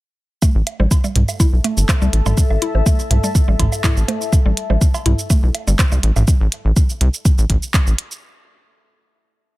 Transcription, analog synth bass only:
0.55 A1
0.80 A1
1.16 C2
1.53 B1
1.77 G1
2.02 C2
2.13 A1
2.26 A1
2.50 A1
2.75 A1
3.10 C2
3.48 A1
3.59 A1
3.97 A1
4.46 A1
4.70 A1
5.06 C2
5.43 B1
5.67 G1
5.92 C2
6.03 A1
6.16 A1
6.41 A1
6.65 A1
7.01 C2
7.38 A1
7.50 A1
7.87 A1

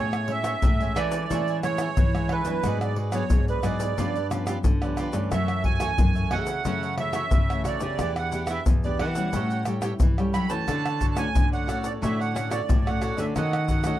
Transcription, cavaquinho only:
Already playing: A4 C#5 E5 G#5
0.29 A4 C#5 E5 G#5
0.45 A4 C#5 E5 G#5
0.81 C#5 E5 G#5
0.96 A4 E5 G#5
1.31 A4 C#5 E5 G#5
1.49 C#5 E5 G#5
1.64 A4 C#5 E5 G#5
1.80 A4 C#5 E5 G#5
2.16 C#5 E5 G#5
2.31 A4 C#5 E5 G#5
2.48 C#5 E5 G#5
2.65 F#4 G#4 B4 D5
2.97 F#4 G#4 B4 D5
3.13 F#4 G#4 B4 D5
3.49 G#4 B4 D5
3.63 F#4 G#4 B4 D5
3.98 F4 G4 B4 D5
4.15 G4 B4 D5
4.32 F4 G4 B4 D5
4.48 F4 G4 B4 D5
4.83 G4 B4 D5
4.98 F4 G4 B4 D5
5.14 G4 B4 D5
5.32 F#4 A4 C#5 E5
5.64 F#4 A4 C#5 E5
5.80 F#4 A4 C#5 E5
6.15 A4 C#5 E5
6.31 F#4 A4 C#5 E5
6.65 F#4 A4 C#5 E5
6.83 A4 C#5 E5
6.98 F#4 A4 C#5 E5
7.14 F#4 A4 C#5 E5
7.50 A4 C#5 E5
7.64 F#4 A4 C#5 E5
7.81 A4 C#5 E5
8.00 E4 G4 B4 D5
8.33 E4 G4 B4 D5
8.50 E4 G4 B4 D5
8.84 G4 B4 D5
8.99 E4 G4 B4 D5
9.34 G4 A4 C#5 G5
9.52 A4 C#5 G5
9.67 G4 A4 C#5 G5
9.82 G4 A4 C#5 G5
10.19 A4 C#5 G5
10.34 G4 A4 C#5 G5
10.49 A4 C#5 G5
10.67 F#4 A4 C#5 D5
11.00 F#4 A4 C#5 D5
11.17 F#4 A4 C#5 D5
11.52 A4 C#5 D5
11.67 F#4 A4 C#5 D5
12.02 F#4 A4 C#5 D5
12.19 A4 C#5 D5
12.35 F#4 A4 C#5 D5
12.50 F#4 A4 C#5 D5
12.86 A4 C#5 D5
13.01 F#4 A4 C#5 D5
13.17 A4 C#5 D5
13.35 F#4 A4 C#5 D#5
13.69 F#4 A4 C#5 D#5
13.86 F#4 A4 C#5 D#5

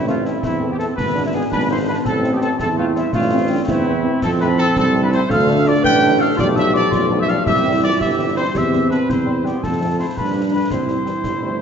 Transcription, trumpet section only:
0.07 F4
0.26 E4
0.44 E4
0.72 G4
0.78 A4
0.95 B4
1.26 E4
1.34 G#4
1.51 B4
1.70 C5
1.88 B4
2.07 A4
2.34 G4
2.42 A4
2.61 A4
2.78 F4
2.96 E4
3.13 F4
3.69 E4
4.23 A4
4.40 B4
4.57 A4
4.77 A4
5.03 B4
5.12 C5
5.30 F5
5.67 D5
5.84 G5
6.20 F5
6.38 D5
6.58 E5
6.75 D5
6.93 D5
7.22 E5
7.29 F5
7.46 E5
7.82 D5
8.00 E5
8.36 C5
8.55 E5
8.90 B4
9.08 C5
9.45 G4
9.63 A4
9.99 C5
10.17 B4
10.53 B4
10.73 C5

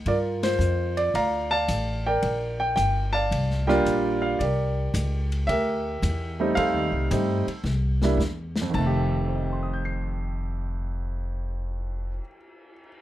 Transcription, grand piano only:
0.07 F4 A#4 D5
0.43 F4 C5
0.97 D5
1.15 D5 F5 A#5
1.51 D5 F5 A5
2.06 A#4 D5 G5
2.60 G5
2.76 G5
3.13 D5 F5 A5
3.67 G3 A#3 D4 F4 A#4 D5 G5
4.22 F5
4.39 G4 A#4 D5
5.47 G4 A#4 E5
6.40 G3 A3 C4 D#4
6.55 A4 C5 F5
7.11 G3 A3 C4 D#4
8.02 G3 A#3 D4 E4
8.62 F2
8.70 D#3
8.75 A5
8.79 A3
8.86 G4
9.28 C5
9.35 D#5
9.43 G5
9.53 C6
9.63 D#6
9.73 G6
9.85 C7

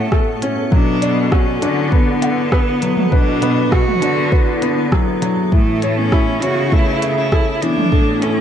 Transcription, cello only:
Already playing: A3
0.73 D4
1.32 C#4
1.92 B3
3.12 D4
3.72 F#4
5.52 A3
5.97 C#4
6.42 F#4
6.72 E4
7.17 E4
7.62 D4
8.22 C#4

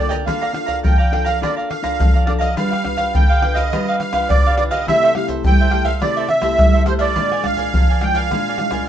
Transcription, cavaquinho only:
0.09 A#4 D5 G5
0.26 A4 D5 F5 A#5
0.41 D5 F5 A#5
0.53 muted cavaquinho stroke
0.66 D5 F5 A#5
0.83 A4 D5 F5 A#5
0.98 D5 F5 A#5
1.24 D5 F5 A#5
1.41 A4 D5 F5 A#5
1.56 D5 F5 A#5
1.70 muted cavaquinho stroke
1.83 D5 F5 A#5
2.14 D5 F5 A#5
2.38 D5 F5 A#5
2.56 D4 G4 B4 F5
2.70 G4 B4 F5
2.97 G4 B4 F5
3.13 D4 G4 B4 F5
3.29 G4 B4 F5
3.55 G4 B4 F5
3.73 D4 G4 B4 F5
3.88 G4 B4 F5
4.02 muted cavaquinho stroke
4.14 G4 B4 F5
4.46 G4 B4 F5
4.71 G4 B4 F5
4.87 E4 A4 C5 E5
5.03 A4 C5 E5
5.15 muted cavaquinho stroke
5.28 A4 C5 E5
5.46 E4 A4 C5 E5
5.61 A4 C5 E5
5.85 A4 C5 E5
6.02 E4 A4 C5 E5
6.17 A4 C5 E5
6.28 muted cavaquinho stroke
6.41 A4 C5 E5
6.73 A4 C5 E5
6.99 A4 C5 E5
7.16 D4 A#4 D5 G#5
7.32 A#4 D5 G#5
7.45 muted cavaquinho stroke
7.57 A#4 D5 G#5
7.75 D4 A#4 D5 G#5
7.90 A#4 D5 G#5
8.16 A#4 D5 G#5
8.34 D4 A#4 D5 G#5
8.49 A#4 D5 G#5
8.60 muted cavaquinho stroke
8.73 A#4 D5 G#5

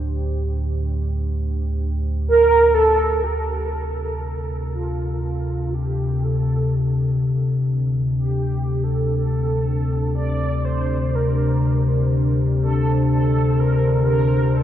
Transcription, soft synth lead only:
2.28 A#4
2.74 A4
3.24 G4
4.73 F4
5.23 F4
5.74 G4
6.23 A4
8.18 G4
8.84 A4
9.16 A4
10.15 D5
10.65 C5
11.15 A#4
12.62 A4
13.12 A4
13.60 A#4
14.09 A#4
14.56 A4

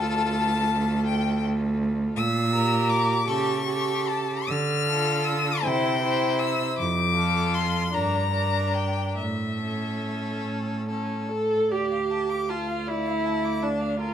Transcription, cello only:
Already playing: D2
2.17 A#2
3.27 C#3
4.48 D3
5.64 C3
6.78 F2
7.93 G2
9.17 A2
10.47 A2
11.71 D2

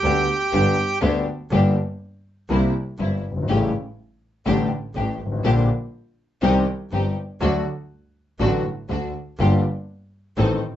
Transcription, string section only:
0.03 B3 D4 G4
0.52 B3 D4 G4
1.02 B3 D4 G4
1.52 A#3 D4 G4
2.50 A#3 C4 E4
2.99 A#3 C4 E4
3.48 A3 C#4 G4
4.46 A3 D4 G4
4.95 A3 D4 G4
5.44 A#3 D4 G4
6.42 C4 D#4 G4
6.92 C4 D#4 G4
7.41 A3 D4 F#4
8.40 A3 D4 F#4
8.89 A3 D4 F#4
9.39 A#3 F4 G4
10.37 C4 D#4 A4

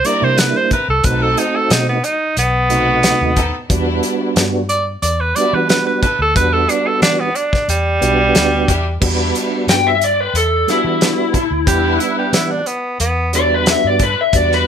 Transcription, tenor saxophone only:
0.06 D5
0.24 C5
0.38 B4
0.57 C5
0.73 B4
0.90 A4
1.05 B4
1.23 A4
1.39 D#4
1.56 A4
1.72 D#4
1.89 B3
2.05 D#4
2.39 B3
4.70 D5
5.03 D5
5.21 B4
5.36 D5
5.54 B4
5.70 B4
5.87 B4
6.03 B4
6.22 A4
6.36 B4
6.53 A4
6.70 D4
6.87 A4
7.02 D4
7.20 B3
7.36 D4
7.70 G3
11.68 G4
12.00 E4
12.19 G4
12.33 E4
12.51 D4
12.67 B3
13.00 B3

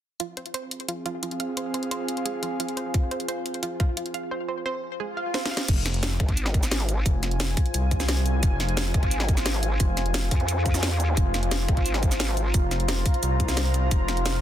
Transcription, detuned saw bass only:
5.68 F1
7.06 F1
7.74 C2
8.43 F1
9.80 F1
11.17 F1
12.54 F1
13.23 C2
13.91 F1

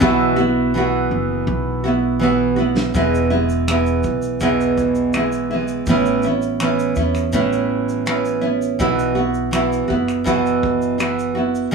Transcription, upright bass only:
0.02 B1
1.11 F#1
1.47 B1
2.94 E1
4.04 B1
5.87 A1
6.97 E2
7.33 A1
8.80 B1
9.90 F#1

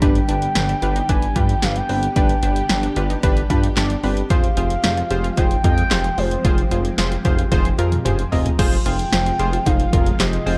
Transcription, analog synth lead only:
0.02 G5
1.09 G#5
1.36 G5
1.63 F5
1.76 G5
2.16 G5
4.31 F5
5.38 G5
5.65 G5
6.18 C5
8.86 G5
9.66 F5
10.20 D#5

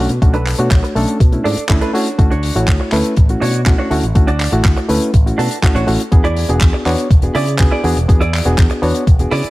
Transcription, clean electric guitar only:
0.09 muted clean electric guitar stroke
0.34 D4 A4 B4
0.83 muted clean electric guitar stroke
0.95 muted clean electric guitar stroke
1.44 D4 A4 D5
1.81 D4 A4 B4
1.93 D4 F#4 C#5
2.30 D4 F#4 C#5
2.80 muted clean electric guitar stroke
2.92 muted clean electric guitar stroke
3.41 D4 F#4 C#5
3.78 D4 F#4 C#5
4.03 muted clean electric guitar stroke
4.27 D4 F#4 D5
4.77 muted clean electric guitar stroke
4.89 muted clean electric guitar stroke
5.38 D4 F#4 A4
5.75 D4 F#4 C#5
5.99 muted clean electric guitar stroke
6.24 E4 G#4 D5
6.73 muted clean electric guitar stroke
6.86 muted clean electric guitar stroke
7.35 E4 G#4 D5
7.71 E4 G#4 D5
7.96 muted clean electric guitar stroke
8.21 E4 G#4 D5
8.70 muted clean electric guitar stroke
8.82 muted clean electric guitar stroke
9.31 E4 G#4 D5

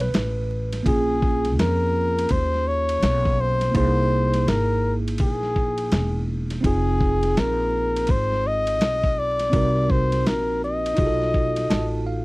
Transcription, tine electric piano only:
0.01 B4
0.83 A#3 C#4 F4
0.88 G#4
3.71 A#3 D#4
3.75 E4 G#4
6.61 C4 D#4 F4
6.67 G#4
9.50 C4 D#4 F#4
9.56 A#4
10.94 D#4 F4 F#4
11.00 G#4
11.06 A4
11.70 A5
12.06 F5

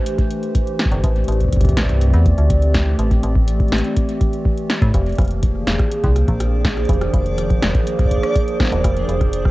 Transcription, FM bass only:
0.92 G1
1.04 A1
1.28 A1
1.77 A1
2.14 E2
2.38 D2
2.99 A1
3.23 A1
3.72 A1
4.82 A2
4.94 F1
5.18 F1
5.67 F1
6.04 C2
6.28 A#1
6.89 F1
7.14 F1
7.62 F1
8.72 D#1
8.84 F1
9.09 F1

